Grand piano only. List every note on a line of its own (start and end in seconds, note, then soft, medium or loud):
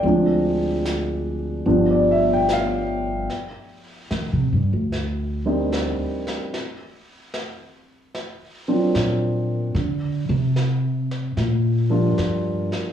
0.03 1.64 F3 soft
0.03 1.66 G#3 soft
0.03 1.66 C4 soft
0.07 1.65 D4 medium
1.66 3.29 F3 medium
1.66 3.29 G3 medium
1.66 3.29 B3 soft
1.66 3.29 D4 medium
1.91 2.18 D5 medium
2.11 2.29 E5 medium
2.33 2.47 G5 medium
2.53 2.84 F5 medium
5.46 5.69 G3 medium
5.46 5.69 A#3 soft
5.46 5.70 C4 soft
5.46 5.69 D4 soft
5.46 5.70 D#4 medium
8.68 8.92 F#3 soft
8.68 8.92 A#3 soft
8.68 8.92 C4 soft
8.68 8.92 D4 soft
8.68 8.92 F4 medium
11.90 12.14 F3 soft
11.90 12.14 G3 soft
11.90 12.14 A#3 soft
11.90 12.14 D4 soft
11.90 12.15 F4 medium